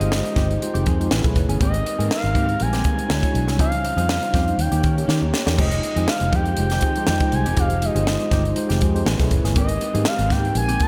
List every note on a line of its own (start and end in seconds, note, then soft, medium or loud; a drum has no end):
0.00 0.21 G1 medium
0.00 0.12 D#3 soft
0.00 1.08 F3 medium
0.00 0.37 G#3 medium
0.00 1.08 G#3 medium
0.00 0.12 G#3 soft
0.00 0.12 C4 medium
0.00 0.37 D#4 medium
0.00 1.07 D#4 medium
0.00 0.37 F4 medium
0.00 0.02 G4 medium
0.00 1.07 G4 medium
0.00 0.34 G4 medium
0.00 0.12 G#4 medium
0.00 0.02 C5 medium
0.00 0.34 C5 medium
0.00 0.86 D#5 medium
0.00 closed hi-hat medium
0.12 snare loud
0.24 muted clean electric guitar stroke soft
0.24 closed hi-hat medium
0.36 0.57 G1 medium
0.36 0.53 D#3 medium
0.36 0.49 G#3 loud
0.36 0.59 G#3 medium
0.36 0.49 C4 loud
0.36 0.59 D#4 medium
0.36 0.59 F4 medium
0.36 0.48 G4 loud
0.36 0.60 G4 medium
0.36 0.60 C5 medium
0.36 kick medium
0.36 snare soft
0.36 closed hi-hat medium
0.49 muted clean electric guitar stroke medium
0.49 closed hi-hat soft
0.61 0.96 G#3 medium
0.61 0.96 D#4 medium
0.61 0.96 F4 medium
0.61 0.96 G4 medium
0.61 0.96 C5 loud
0.61 muted clean electric guitar stroke medium
0.61 closed hi-hat medium
0.74 0.84 F1 loud
0.74 0.84 D#3 medium
0.74 0.85 G#3 medium
0.74 0.85 C4 medium
0.74 0.87 G4 medium
0.74 closed hi-hat medium
0.86 1.07 F2 loud
0.86 0.99 D#3 medium
0.86 0.99 G#3 medium
0.86 0.99 C4 medium
0.86 0.99 G#4 medium
0.86 kick medium
0.86 closed hi-hat medium
1.00 1.11 G#3 medium
1.00 1.11 D#4 medium
1.00 1.11 F4 medium
1.00 1.12 G4 medium
1.00 1.12 C5 loud
1.00 muted clean electric guitar stroke medium
1.00 closed hi-hat medium
1.11 1.22 A1 loud
1.11 1.27 E3 medium
1.11 3.09 E3 medium
1.11 1.23 A3 loud
1.11 1.61 A3 medium
1.11 1.25 B3 medium
1.11 1.23 C#4 medium
1.11 1.24 C#4 loud
1.11 1.61 C#4 medium
1.11 1.23 E4 medium
1.11 1.24 G#4 medium
1.11 1.23 G#4 loud
1.11 1.24 B4 loud
1.11 snare loud
1.24 1.34 B1 medium
1.24 1.57 A3 medium
1.24 1.57 C#4 medium
1.24 1.58 E4 medium
1.24 1.58 G#4 medium
1.24 1.58 B4 loud
1.24 muted clean electric guitar stroke soft
1.24 kick medium
1.24 closed hi-hat medium
1.36 1.47 F#1 medium
1.36 muted clean electric guitar stroke soft
1.36 kick medium
1.36 closed hi-hat medium
1.49 1.58 G1 medium
1.49 1.60 E3 medium
1.49 1.61 B3 medium
1.49 1.61 C#4 medium
1.49 1.61 G#4 medium
1.49 closed hi-hat medium
1.60 1.81 G#1 loud
1.60 1.77 D#3 medium
1.60 1.95 G#3 medium
1.60 1.74 A#3 medium
1.60 1.95 C4 medium
1.60 3.09 C4 medium
1.60 1.73 C4 medium
1.60 1.95 D#4 medium
1.60 1.95 G4 medium
1.60 1.73 G4 loud
1.60 1.95 A#4 medium
1.60 3.09 A#4 medium
1.60 2.08 D#5 loud
1.60 kick loud
1.60 closed hi-hat medium
1.74 muted clean electric guitar stroke medium
1.74 closed hi-hat medium
1.85 muted clean electric guitar stroke soft
1.85 closed hi-hat medium
1.98 2.08 G#2 loud
1.98 2.11 D#3 soft
1.98 2.32 G#3 medium
1.98 2.11 A#3 medium
1.98 2.32 C4 medium
1.98 2.10 C4 medium
1.98 2.32 D#4 medium
1.98 2.32 G4 medium
1.98 2.10 G#4 medium
1.98 2.32 A#4 medium
1.98 closed hi-hat medium
2.11 2.63 F5 loud
2.11 snare loud
2.23 2.33 G#1 loud
2.23 muted clean electric guitar stroke soft
2.23 closed hi-hat medium
2.34 2.55 G#2 medium
2.34 2.51 D#3 loud
2.34 2.58 G#3 medium
2.34 2.48 A#3 medium
2.34 2.58 C4 medium
2.34 2.48 C4 medium
2.34 2.58 D#4 medium
2.34 2.58 G4 medium
2.34 2.47 G4 medium
2.34 2.58 A#4 medium
2.34 kick medium
2.34 closed hi-hat medium
2.48 muted clean electric guitar stroke medium
2.48 closed hi-hat soft
2.59 2.81 A#1 loud
2.59 2.95 G3 medium
2.59 2.94 G#3 medium
2.59 2.94 C4 medium
2.59 2.94 D#4 medium
2.59 2.95 A#4 medium
2.59 3.60 G#5 loud
2.59 muted clean electric guitar stroke soft
2.59 closed hi-hat medium
2.73 2.82 D#3 medium
2.73 2.83 A#3 medium
2.73 2.84 C4 medium
2.73 2.85 G4 medium
2.73 snare soft
2.73 closed hi-hat medium
2.84 2.98 D#3 medium
2.84 2.97 A#3 medium
2.84 2.97 C4 medium
2.84 2.97 G#4 medium
2.84 kick medium
2.84 closed hi-hat medium
2.97 3.07 G#3 medium
2.97 3.09 C4 medium
2.97 3.10 D#4 medium
2.97 3.10 G4 medium
2.97 3.10 A#4 medium
2.97 muted clean electric guitar stroke soft
2.97 closed hi-hat soft
3.08 3.21 D2 medium
3.08 3.59 D3 medium
3.08 3.21 G#3 medium
3.08 3.21 D4 medium
3.08 3.59 E4 medium
3.08 3.22 E4 medium
3.08 3.59 F#4 medium
3.08 3.22 F#4 medium
3.08 3.58 G#4 medium
3.08 3.59 C#5 medium
3.08 3.22 C#5 medium
3.08 muted clean electric guitar stroke soft
3.08 snare loud
3.22 3.56 G#3 medium
3.22 3.56 D4 medium
3.22 3.56 E4 medium
3.22 3.56 F#4 medium
3.22 3.56 C#5 loud
3.22 muted clean electric guitar stroke soft
3.22 kick medium
3.22 closed hi-hat medium
3.35 3.48 B1 medium
3.35 closed hi-hat medium
3.48 3.59 C2 medium
3.48 muted clean electric guitar stroke medium
3.48 snare soft
3.48 closed hi-hat medium
3.58 3.91 C#2 loud
3.58 4.57 C#3 medium
3.58 3.76 F3 medium
3.58 3.93 G3 medium
3.58 3.72 C4 medium
3.58 3.94 C#4 medium
3.58 4.57 D#4 medium
3.58 3.94 D#4 medium
3.58 3.72 D#4 medium
3.58 4.57 F4 medium
3.58 3.94 F4 medium
3.58 4.57 G4 medium
3.58 3.71 G4 medium
3.58 4.58 C5 medium
3.58 3.94 C5 medium
3.58 4.62 F5 loud
3.58 kick loud
3.58 closed hi-hat medium
3.72 muted clean electric guitar stroke soft
3.72 closed hi-hat medium
3.84 muted clean electric guitar stroke soft
3.84 closed hi-hat medium
3.96 4.17 F2 medium
3.96 4.10 F3 soft
3.96 4.30 G3 medium
3.96 4.10 C4 medium
3.96 4.30 C#4 medium
3.96 4.30 D#4 medium
3.96 4.09 D#4 medium
3.96 4.31 F4 medium
3.96 4.09 G#4 medium
3.96 4.31 C5 medium
3.96 closed hi-hat medium
4.09 snare loud
4.22 muted clean electric guitar stroke soft
4.22 closed hi-hat medium
4.33 4.54 F2 medium
4.33 4.50 F3 medium
4.33 4.57 G3 medium
4.33 4.46 C4 medium
4.33 4.57 C#4 medium
4.33 4.46 D#4 medium
4.33 4.57 D#4 medium
4.33 4.57 F4 medium
4.33 4.45 G4 medium
4.33 4.57 C5 loud
4.33 kick medium
4.33 snare soft
4.33 closed hi-hat medium
4.46 muted clean electric guitar stroke soft
4.46 closed hi-hat soft
4.58 4.69 D#2 loud
4.58 5.57 D#3 medium
4.58 4.93 A#3 medium
4.58 4.93 C#4 medium
4.58 5.57 C#4 medium
4.58 4.93 D#4 medium
4.58 5.57 G4 medium
4.58 4.94 G4 medium
4.58 4.94 C#5 medium
4.58 5.10 G5 medium
4.58 muted clean electric guitar stroke soft
4.58 closed hi-hat medium
4.72 4.81 D#2 medium
4.72 4.82 D#3 medium
4.72 4.83 A#3 medium
4.72 4.83 C#4 medium
4.72 4.84 G4 medium
4.72 closed hi-hat medium
4.83 4.97 D#3 medium
4.83 5.04 D#3 loud
4.83 4.97 A#3 medium
4.83 4.97 C#4 medium
4.83 4.97 A#4 medium
4.83 kick medium
4.83 closed hi-hat medium
4.97 5.19 A#3 medium
4.97 5.20 C#4 medium
4.97 5.20 D#4 medium
4.97 5.20 G4 medium
4.97 5.20 C#5 medium
4.97 muted clean electric guitar stroke soft
4.97 closed hi-hat soft
5.08 5.25 D#3 medium
5.08 5.19 D#3 medium
5.08 5.22 A#3 medium
5.08 5.21 C#4 medium
5.08 5.20 G4 medium
5.08 snare medium
5.21 5.31 D#2 medium
5.21 5.55 A#3 medium
5.21 5.55 C#4 medium
5.21 5.55 D#4 medium
5.21 5.55 G4 medium
5.21 5.55 C#5 loud
5.21 muted clean electric guitar stroke soft
5.33 muted clean electric guitar stroke soft
5.33 snare medium
5.46 5.56 E2 medium
5.46 5.56 D#3 soft
5.46 5.58 A#3 soft
5.46 5.58 C#4 medium
5.46 5.58 G4 medium
5.46 snare loud
5.57 5.79 F1 loud
5.57 5.75 D#3 medium
5.57 9.04 F3 medium
5.57 5.92 G#3 medium
5.57 5.71 G#3 medium
5.57 9.04 G#3 medium
5.57 5.71 C4 medium
5.57 5.93 D#4 medium
5.57 9.03 D#4 medium
5.57 5.93 F4 medium
5.57 5.93 G4 medium
5.57 5.70 G4 loud
5.57 9.04 G4 medium
5.57 5.93 C5 medium
5.57 5.82 D#5 medium
5.57 kick loud
5.57 crash loud
5.71 muted clean electric guitar stroke soft
5.71 closed hi-hat medium
5.83 6.10 D#5 medium
5.83 muted clean electric guitar stroke soft
5.83 closed hi-hat medium
5.96 6.06 F2 medium
5.96 6.09 D#3 soft
5.96 6.30 G#3 medium
5.96 6.09 G#3 medium
5.96 6.08 C4 medium
5.96 6.30 D#4 medium
5.96 6.30 F4 medium
5.96 6.30 G4 medium
5.96 6.08 G#4 medium
5.96 6.30 C5 medium
5.96 closed hi-hat medium
6.08 6.37 F5 loud
6.08 snare loud
6.21 6.31 F1 medium
6.21 muted clean electric guitar stroke soft
6.21 closed hi-hat medium
6.32 6.53 F2 loud
6.32 6.49 D#3 medium
6.32 6.56 G#3 medium
6.32 6.47 G#3 medium
6.32 6.46 C4 medium
6.32 6.56 D#4 medium
6.32 6.56 F4 medium
6.32 6.56 G4 medium
6.32 6.46 G4 medium
6.32 6.56 C5 medium
6.32 7.36 G5 loud
6.32 kick medium
6.32 closed hi-hat medium
6.45 muted clean electric guitar stroke medium
6.45 closed hi-hat soft
6.57 6.78 F1 medium
6.57 6.93 G#3 medium
6.57 6.93 D#4 medium
6.57 6.93 F4 medium
6.57 6.93 G4 medium
6.57 6.93 C5 medium
6.57 muted clean electric guitar stroke soft
6.57 closed hi-hat medium
6.70 6.82 D#3 medium
6.70 6.82 G#3 medium
6.70 6.83 C4 medium
6.70 6.84 G4 medium
6.70 snare soft
6.70 closed hi-hat medium
6.81 6.96 D#3 medium
6.81 6.96 G#3 medium
6.81 6.96 C4 medium
6.81 6.95 G#4 medium
6.81 kick medium
6.81 closed hi-hat medium
6.96 7.19 G#3 loud
6.96 7.19 D#4 medium
6.96 7.19 F4 medium
6.96 7.19 G4 medium
6.96 7.19 C5 loud
6.96 muted clean electric guitar stroke medium
6.96 closed hi-hat medium
7.06 7.19 F2 medium
7.06 7.24 D#3 loud
7.06 7.21 G#3 medium
7.06 7.20 C4 medium
7.06 7.19 G4 loud
7.06 snare loud
7.20 7.54 G#3 medium
7.20 7.54 D#4 medium
7.20 7.55 F4 medium
7.20 7.55 G4 medium
7.20 7.55 C5 medium
7.20 muted clean electric guitar stroke soft
7.20 kick loud
7.20 closed hi-hat medium
7.32 7.44 C2 medium
7.32 7.61 G#5 loud
7.32 muted clean electric guitar stroke soft
7.32 closed hi-hat medium
7.46 7.55 E1 medium
7.46 7.55 D#3 medium
7.46 7.56 G#3 medium
7.46 7.56 C4 medium
7.46 7.57 G4 medium
7.46 closed hi-hat medium
7.56 7.89 F1 medium
7.56 7.74 D#3 medium
7.56 7.70 G#3 loud
7.56 7.92 G#3 medium
7.56 7.70 C4 loud
7.56 7.92 D#4 medium
7.56 7.92 F4 medium
7.56 7.69 G4 loud
7.56 7.92 G4 medium
7.56 7.92 C5 medium
7.56 7.87 F5 loud
7.56 kick loud
7.56 closed hi-hat medium
7.70 muted clean electric guitar stroke soft
7.70 closed hi-hat medium
7.81 8.83 D#5 loud
7.81 muted clean electric guitar stroke medium
7.81 closed hi-hat medium
7.95 8.16 G1 loud
7.95 8.08 D#3 soft
7.95 8.28 G#3 medium
7.95 8.07 G#3 soft
7.95 8.07 C4 medium
7.95 8.29 D#4 medium
7.95 8.29 F4 medium
7.95 8.29 G4 medium
7.95 8.07 G#4 medium
7.95 8.29 C5 medium
7.95 closed hi-hat medium
8.07 snare loud
8.20 muted clean electric guitar stroke soft
8.20 closed hi-hat medium
8.31 8.52 G1 medium
8.31 8.48 D#3 medium
8.31 8.55 G#3 medium
8.31 8.45 G#3 medium
8.31 8.44 C4 medium
8.31 8.55 D#4 medium
8.31 8.55 F4 medium
8.31 8.55 G4 medium
8.31 8.44 G4 loud
8.31 8.55 C5 medium
8.31 kick medium
8.31 snare soft
8.31 closed hi-hat medium
8.45 muted clean electric guitar stroke soft
8.45 closed hi-hat soft
8.56 8.91 G#3 medium
8.56 8.91 D#4 medium
8.56 8.91 F4 medium
8.56 8.91 G4 medium
8.56 8.92 C5 loud
8.56 muted clean electric guitar stroke soft
8.56 closed hi-hat medium
8.69 8.80 F1 loud
8.69 8.79 D#3 medium
8.69 8.80 G#3 medium
8.69 8.80 C4 medium
8.69 8.82 G4 medium
8.69 snare soft
8.69 closed hi-hat medium
8.81 9.02 F2 medium
8.81 8.95 D#3 medium
8.81 8.95 G#3 medium
8.81 8.94 C4 medium
8.81 8.94 G#4 medium
8.81 kick medium
8.81 closed hi-hat medium
8.94 9.06 G#3 loud
8.94 9.06 D#4 medium
8.94 9.06 F4 medium
8.94 9.07 G4 medium
8.94 9.07 C5 medium
8.94 muted clean electric guitar stroke soft
8.94 closed hi-hat medium
9.05 9.17 A1 medium
9.05 9.23 E3 medium
9.05 10.88 E3 medium
9.05 9.55 A3 medium
9.05 9.18 A3 medium
9.05 9.20 B3 loud
9.05 9.18 C#4 medium
9.05 9.56 C#4 medium
9.05 9.20 C#4 loud
9.05 9.19 E4 medium
9.05 9.19 G#4 medium
9.05 9.19 G#4 loud
9.05 snare loud
9.19 9.29 B1 medium
9.19 9.53 A3 medium
9.19 9.53 C#4 medium
9.19 9.53 E4 medium
9.19 9.53 G#4 medium
9.19 9.53 B4 loud
9.19 muted clean electric guitar stroke soft
9.19 kick medium
9.19 snare soft
9.19 closed hi-hat medium
9.31 9.42 F#1 medium
9.31 muted clean electric guitar stroke soft
9.31 kick loud
9.31 closed hi-hat medium
9.44 9.56 G1 medium
9.44 9.55 E3 medium
9.44 9.56 B3 medium
9.44 9.56 C#4 medium
9.44 9.56 G#4 medium
9.44 snare soft
9.44 closed hi-hat medium
9.56 9.76 G#1 loud
9.56 9.73 D#3 medium
9.56 9.90 G#3 medium
9.56 9.70 A#3 loud
9.56 9.91 C4 medium
9.56 9.69 C4 loud
9.56 10.88 C4 medium
9.56 9.91 D#4 medium
9.56 9.91 G4 medium
9.56 10.88 G4 medium
9.56 9.69 G4 loud
9.56 9.91 A#4 medium
9.56 10.09 D#5 medium
9.56 kick loud
9.56 closed hi-hat medium
9.69 muted clean electric guitar stroke soft
9.69 closed hi-hat medium
9.81 muted clean electric guitar stroke soft
9.81 closed hi-hat medium
9.93 10.04 G#2 loud
9.93 10.07 D#3 soft
9.93 10.27 G#3 medium
9.93 10.06 A#3 medium
9.93 10.27 C4 medium
9.93 10.06 C4 medium
9.93 10.27 D#4 medium
9.93 10.27 G4 medium
9.93 10.06 G#4 medium
9.93 10.28 A#4 medium
9.93 closed hi-hat medium
10.05 10.33 F5 loud
10.05 snare loud
10.19 10.28 G#1 loud
10.19 muted clean electric guitar stroke medium
10.19 closed hi-hat medium
10.30 10.51 G#2 medium
10.30 10.47 D#3 loud
10.30 10.53 G#3 medium
10.30 10.44 A#3 loud
10.30 10.53 C4 medium
10.30 10.44 C4 loud
10.30 10.53 D#4 medium
10.30 10.53 G4 medium
10.30 10.43 G4 loud
10.30 10.54 A#4 medium
10.30 10.56 G5 loud
10.30 kick medium
10.30 snare soft
10.30 closed hi-hat medium
10.44 muted clean electric guitar stroke medium
10.44 closed hi-hat soft
10.54 10.76 A#1 loud
10.54 10.88 G#3 medium
10.54 10.88 C4 medium
10.54 10.88 D#4 medium
10.54 10.88 G4 medium
10.54 10.88 A#4 medium
10.54 10.84 G#5 loud
10.54 muted clean electric guitar stroke soft
10.54 closed hi-hat medium
10.68 10.78 D#3 medium
10.68 10.79 A#3 medium
10.68 10.80 C4 loud
10.68 10.81 G4 medium
10.68 closed hi-hat medium
10.80 10.88 D#3 medium
10.80 10.88 A#3 medium
10.80 10.88 C4 medium
10.80 10.88 G#4 medium
10.80 10.88 A5 loud
10.80 kick medium
10.80 closed hi-hat medium